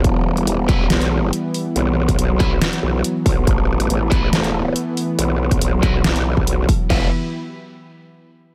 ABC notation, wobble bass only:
X:1
M:4/4
L:1/8
Q:1/4=140
K:Em
V:1 name="Wobble bass" clef=bass
E,,,2 E,,,2 B,,,2 z2 | B,,,2 B,,,2 z B,,, z B,,, | A,,,2 A,,,2 E,,,2 z2 | B,,,2 B,,,2 B,,,3 z |
E,,, z6 z |]